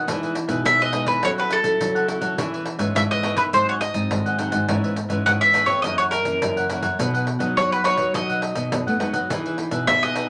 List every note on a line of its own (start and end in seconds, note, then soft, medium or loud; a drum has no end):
0.07 0.44 E3 medium
0.07 0.62 E3 soft
0.07 0.35 G#3 soft
0.07 0.35 B3 soft
0.07 0.20 D#4 soft
0.07 0.35 D#4 medium
0.07 0.21 G#4 soft
0.07 0.21 B4 soft
0.07 0.21 E5 soft
0.07 pandeiro medium
0.22 0.33 G#4 soft
0.22 0.34 B4 medium
0.22 0.34 E5 medium
0.22 pandeiro soft
0.34 muted cavaquinho stroke soft
0.34 pandeiro medium
0.48 0.62 B2 medium
0.48 0.88 G#3 medium
0.48 0.88 B3 medium
0.48 0.89 D#4 medium
0.48 0.63 G#4 medium
0.48 0.63 B4 medium
0.48 0.63 E5 medium
0.48 pandeiro medium
0.65 1.02 B2 medium
0.65 1.20 B2 medium
0.65 0.78 D#4 soft
0.65 0.79 G#4 soft
0.65 0.79 B4 soft
0.65 0.80 E5 medium
0.65 0.79 E5 soft
0.65 pandeiro medium
0.80 0.91 G#4 soft
0.80 0.92 B4 soft
0.80 1.07 D#5 medium
0.80 0.92 E5 medium
0.80 pandeiro soft
0.92 1.18 G#3 soft
0.92 1.18 B3 medium
0.92 1.06 D#4 medium
0.92 1.18 D#4 medium
0.92 1.06 G#4 medium
0.92 1.06 B4 medium
0.92 1.05 E5 medium
0.92 pandeiro medium
1.06 1.19 E3 medium
1.06 1.21 G#4 soft
1.06 1.21 B4 medium
1.06 1.23 B4 medium
1.06 1.20 E5 medium
1.06 pandeiro medium
1.23 1.77 F#3 soft
1.23 1.60 F#3 medium
1.23 1.61 C#4 medium
1.23 1.36 E4 soft
1.23 1.62 E4 soft
1.23 1.36 A4 soft
1.23 1.62 A4 medium
1.23 1.36 C#5 soft
1.23 1.30 C#5 medium
1.23 1.36 F#5 medium
1.23 pandeiro medium
1.37 1.49 A4 medium
1.37 1.52 B4 medium
1.37 1.49 C#5 medium
1.37 1.49 F#5 medium
1.37 pandeiro soft
1.50 2.06 A4 medium
1.50 muted cavaquinho stroke soft
1.50 pandeiro medium
1.64 1.77 F#3 medium
1.64 2.04 C#4 medium
1.64 2.04 E4 soft
1.64 2.04 A4 medium
1.64 pandeiro soft
1.80 2.35 C#3 medium
1.80 2.17 F#3 medium
1.80 pandeiro medium
1.95 2.07 A4 soft
1.95 2.07 C#5 medium
1.95 2.08 F#5 medium
1.95 pandeiro soft
2.08 2.33 C#4 soft
2.08 2.22 E4 soft
2.08 2.33 E4 soft
2.08 2.21 A4 soft
2.08 2.33 A4 medium
2.08 2.20 C#5 soft
2.08 2.20 F#5 medium
2.08 pandeiro medium
2.21 2.35 F#3 medium
2.21 2.36 A4 medium
2.21 2.36 C#5 medium
2.21 2.35 F#5 medium
2.21 pandeiro soft
2.38 2.75 E3 medium
2.38 2.93 E3 soft
2.38 2.77 B3 medium
2.38 2.77 C#4 soft
2.38 2.51 E4 soft
2.38 2.77 G#4 medium
2.38 2.52 B4 soft
2.38 2.52 C#5 soft
2.38 2.52 E5 soft
2.38 pandeiro medium
2.53 2.65 B4 medium
2.53 2.65 C#5 soft
2.53 2.65 E5 medium
2.53 pandeiro soft
2.66 muted cavaquinho stroke soft
2.66 pandeiro medium
2.79 2.92 G#2 medium
2.79 3.19 B3 medium
2.79 3.19 C#4 medium
2.79 3.19 G#4 medium
2.79 2.94 B4 medium
2.79 2.94 C#5 medium
2.79 2.93 E5 medium
2.79 pandeiro medium
2.95 3.32 G#2 medium
2.95 3.51 E3 medium
2.95 3.09 E4 soft
2.95 3.09 B4 soft
2.95 3.09 C#5 soft
2.95 3.01 E5 medium
2.95 3.10 E5 medium
2.95 pandeiro medium
3.11 3.23 B4 soft
3.11 3.23 C#5 medium
3.11 3.37 D#5 medium
3.11 3.24 E5 medium
3.11 pandeiro soft
3.23 3.41 B3 medium
3.23 3.41 C#4 medium
3.23 3.37 E4 medium
3.23 3.41 G#4 soft
3.23 3.36 B4 medium
3.23 3.36 C#5 medium
3.23 3.35 E5 medium
3.23 pandeiro medium
3.36 3.50 D#3 medium
3.36 3.43 B4 medium
3.36 3.52 B4 soft
3.36 3.51 C#5 medium
3.36 3.51 E5 medium
3.36 pandeiro medium
3.53 4.08 G#2 soft
3.53 3.90 G#2 medium
3.53 3.80 F#3 soft
3.53 3.80 C4 soft
3.53 3.67 D#4 soft
3.53 3.81 D#4 medium
3.53 3.67 G#4 soft
3.53 3.68 C5 medium
3.53 3.67 C5 soft
3.53 3.67 F#5 soft
3.53 pandeiro medium
3.69 3.80 G#4 soft
3.69 3.80 C5 medium
3.69 3.74 C#5 medium
3.69 3.80 F#5 medium
3.69 pandeiro soft
3.81 4.35 D#5 medium
3.81 muted cavaquinho stroke soft
3.81 pandeiro medium
3.94 4.08 G#2 medium
3.94 4.34 F#3 soft
3.94 4.34 C4 medium
3.94 4.34 D#4 medium
3.94 pandeiro medium
4.11 4.48 G#2 medium
4.11 4.66 D#3 soft
4.11 pandeiro medium
4.26 4.38 G#4 soft
4.26 4.38 C5 medium
4.26 4.38 F#5 medium
4.26 pandeiro soft
4.38 4.56 F#3 medium
4.38 4.56 C4 medium
4.38 4.52 D#4 soft
4.38 4.56 D#4 medium
4.38 4.51 G#4 soft
4.38 4.51 C5 soft
4.38 4.50 F#5 medium
4.38 pandeiro medium
4.51 4.65 G#2 medium
4.51 4.67 G#4 medium
4.51 4.66 C5 medium
4.51 4.66 F#5 medium
4.51 pandeiro medium
4.68 5.23 G#2 soft
4.68 5.06 G#2 loud
4.68 4.96 E3 medium
4.68 4.96 B3 soft
4.68 4.96 C#4 medium
4.68 4.82 E4 soft
4.68 4.82 B4 soft
4.68 4.82 C#5 soft
4.68 4.82 E5 soft
4.68 pandeiro medium
4.83 4.95 B4 soft
4.83 4.95 C#5 medium
4.83 4.96 E5 medium
4.83 pandeiro soft
4.96 muted cavaquinho stroke soft
4.96 pandeiro medium
5.09 5.23 G#2 medium
5.09 5.49 E3 soft
5.09 5.49 B3 medium
5.09 5.49 C#4 medium
5.09 5.24 B4 medium
5.09 5.24 C#5 medium
5.09 5.24 E5 medium
5.09 pandeiro soft
5.26 5.81 G#2 soft
5.26 5.63 G#2 medium
5.26 5.39 E4 soft
5.26 5.40 B4 soft
5.26 5.40 C#5 medium
5.26 5.40 E5 medium
5.26 5.31 F#5 medium
5.26 pandeiro medium
5.41 5.53 B4 soft
5.41 5.54 C#5 medium
5.41 5.54 E5 medium
5.41 5.71 E5 medium
5.41 pandeiro soft
5.53 5.71 E3 medium
5.53 5.72 B3 soft
5.53 5.72 C#4 medium
5.53 5.68 E4 medium
5.53 5.67 B4 medium
5.53 5.67 C#5 medium
5.53 5.66 E5 medium
5.53 pandeiro medium
5.66 5.81 F2 medium
5.66 5.82 B4 soft
5.66 5.82 C#5 medium
5.66 5.82 E5 medium
5.66 pandeiro soft
5.82 6.39 F#2 soft
5.82 6.21 F#2 medium
5.82 6.11 E3 medium
5.82 6.11 A#3 soft
5.82 6.12 C#4 medium
5.82 5.97 E4 soft
5.82 5.98 A#4 soft
5.82 5.98 C#5 soft
5.82 5.96 D#5 medium
5.82 5.98 F#5 medium
5.82 pandeiro medium
5.98 6.11 A#4 soft
5.98 6.03 C#5 medium
5.98 6.11 C#5 medium
5.98 6.12 F#5 medium
5.98 pandeiro soft
6.11 6.66 A#4 medium
6.11 muted cavaquinho stroke soft
6.11 pandeiro medium
6.25 6.38 F#2 medium
6.25 6.65 E3 medium
6.25 6.65 A#3 medium
6.25 6.65 C#4 medium
6.25 pandeiro soft
6.42 6.78 F#2 medium
6.42 6.96 C#3 medium
6.42 pandeiro medium
6.57 6.68 A#4 soft
6.57 6.69 C#5 medium
6.57 6.69 F#5 medium
6.57 pandeiro soft
6.69 6.87 E3 medium
6.69 6.87 A#3 medium
6.69 6.87 C#4 medium
6.69 6.83 E4 soft
6.69 6.83 A#4 soft
6.69 6.82 C#5 soft
6.69 6.81 F#5 medium
6.69 pandeiro medium
6.82 6.96 F#2 medium
6.82 6.98 A#4 soft
6.82 6.97 C#5 medium
6.82 6.97 F#5 medium
6.82 pandeiro soft
6.99 7.36 B2 medium
6.99 7.54 B2 soft
6.99 7.26 F#3 soft
6.99 7.27 B3 soft
6.99 7.27 D#4 medium
6.99 7.12 F#4 soft
6.99 7.13 B4 soft
6.99 7.13 D#5 medium
6.99 7.12 F#5 medium
6.99 pandeiro medium
7.14 7.25 B4 soft
7.14 7.25 D#5 medium
7.14 7.26 F#5 medium
7.14 pandeiro soft
7.26 muted cavaquinho stroke soft
7.26 pandeiro medium
7.39 7.80 F#3 medium
7.39 7.53 F#3 medium
7.39 7.80 B3 medium
7.39 7.80 D#4 medium
7.39 7.55 B4 soft
7.39 7.54 D#5 medium
7.39 7.54 F#5 medium
7.39 pandeiro soft
7.56 7.94 F#3 medium
7.56 7.70 F#4 soft
7.56 7.70 B4 soft
7.56 7.72 C#5 medium
7.56 7.70 D#5 soft
7.56 7.70 F#5 soft
7.56 pandeiro medium
7.71 7.84 B4 medium
7.71 7.83 B4 soft
7.71 7.84 D#5 medium
7.71 7.85 F#5 medium
7.71 pandeiro soft
7.84 8.09 F#3 medium
7.84 8.10 B3 medium
7.84 8.10 D#4 medium
7.84 7.98 F#4 medium
7.84 7.97 B4 medium
7.84 8.15 C#5 medium
7.84 7.96 D#5 medium
7.84 7.96 F#5 medium
7.84 pandeiro medium
7.97 8.11 F#3 medium
7.97 8.12 B4 soft
7.97 8.12 D#5 medium
7.97 8.12 F#5 medium
7.97 pandeiro medium
8.14 8.70 B2 soft
8.14 8.51 F#3 medium
8.14 8.54 F#3 soft
8.14 8.54 B3 soft
8.14 8.54 D#4 medium
8.14 8.28 F#4 soft
8.14 8.28 B4 soft
8.14 8.28 D#5 soft
8.14 8.97 D#5 medium
8.14 8.28 F#5 soft
8.14 pandeiro medium
8.29 8.41 B4 soft
8.29 8.41 D#5 soft
8.29 8.41 F#5 medium
8.29 pandeiro soft
8.42 pandeiro medium
8.55 8.69 B2 medium
8.55 8.96 F#3 soft
8.55 8.96 B3 medium
8.55 8.96 D#4 medium
8.55 pandeiro medium
8.72 9.27 F#2 soft
8.72 8.85 B2 medium
8.72 pandeiro medium
8.87 9.00 A3 medium
8.87 8.99 B4 soft
8.87 8.99 D#5 medium
8.87 8.99 F#5 medium
8.87 pandeiro soft
8.99 9.18 F#3 medium
8.99 9.14 G#3 medium
8.99 9.18 B3 medium
8.99 9.18 D#4 medium
8.99 9.14 F#4 soft
8.99 9.13 B4 soft
8.99 9.13 D#5 soft
8.99 9.12 F#5 medium
8.99 pandeiro medium
9.13 9.27 F#3 medium
9.13 9.28 B4 medium
9.13 9.28 D#5 medium
9.13 9.28 F#5 medium
9.13 pandeiro soft
9.30 9.67 E3 medium
9.30 9.85 E3 soft
9.30 9.47 B3 soft
9.30 9.43 D#4 soft
9.30 9.47 D#4 medium
9.30 9.44 G#4 soft
9.30 9.48 G#4 soft
9.30 9.44 B4 soft
9.30 9.44 E5 soft
9.30 pandeiro medium
9.45 9.57 G#4 medium
9.45 9.57 B4 medium
9.45 9.57 E5 medium
9.45 pandeiro soft
9.58 9.86 B3 soft
9.58 9.86 D#4 soft
9.58 9.86 G#4 medium
9.58 muted cavaquinho stroke soft
9.58 pandeiro medium
9.71 9.84 B2 medium
9.71 9.87 G#4 soft
9.71 9.86 B4 medium
9.71 9.86 E5 medium
9.71 pandeiro medium
9.87 10.25 B2 medium
9.87 10.29 B2 medium
9.87 10.01 D#4 soft
9.87 10.01 G#4 soft
9.87 10.01 B4 soft
9.87 10.03 E5 medium
9.87 pandeiro medium
10.03 10.27 B3 medium
10.03 10.27 D#4 soft
10.03 10.27 G#4 medium
10.03 10.14 G#4 soft
10.03 10.15 B4 medium
10.03 10.28 D#5 medium
10.03 10.15 E5 medium
10.03 pandeiro soft
10.15 10.29 D#4 medium
10.15 10.29 G#4 medium
10.15 10.28 B4 medium
10.15 10.28 E5 medium
10.15 pandeiro medium